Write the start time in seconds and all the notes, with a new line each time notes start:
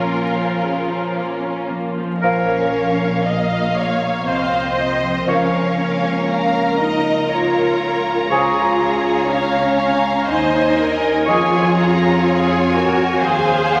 Already playing: A#2 F3 C#4 F4 A#4
0.06 A#3 A#4
0.33 F3 C#5
0.61 C#3 A#4
0.88 F3 C#5
1.15 A#3 A#4
1.42 C#4
1.69 F3 A#3
1.95 F3 C#4
2.16 D#4
2.22 A#1 A#2 F3 C#4 A#4 C#5 F5
2.48 F3
2.99 F4
3.24 A#3 A#4 D#5 F5
3.51 F4
3.76 C#5 F5
4.02 A#5
4.26 C2 C4 C5 D#5 F5
4.52 A#4
4.76 F4 D#5
5.02 F3
5.27 C#2 C#3 F3 C#4 A#4 C#5 F5
5.52 C#4
5.77 A#3 F5
6.02 F4
6.27 A#4 F5 A#5
6.53 F4
6.78 D#4 D#5 F5
7.04 A#5
7.29 F4 A#4 C#5 F5
7.54 A#4
7.79 F4
8.04 C#4
8.30 C#2 C#3 F3 F4 G#4 C#5 G#5
8.55 C#4
8.80 G#3 G#4
9.05 G#4
9.28 C#4 C#5 F5
9.53 G#4
9.77 F5 G#5
10.02 C#6
10.27 D#2 D#4 C5 D#5 G#5
10.53 C#5
10.78 G#4 A#4
11.03 C#4
11.26 F2 F3 G#3 F4 G#4 C#5 G#5
11.51 F4
11.76 G#3 A#5
12.00 G#4
12.23 G#4 C#5 G#5
12.48 G#4
12.72 F#4 A#4 G#5
12.96 C#6
13.19 D#2 G#4 C5 F5 G#5
13.24 G#4
13.45 C#5
13.70 G#4 F#5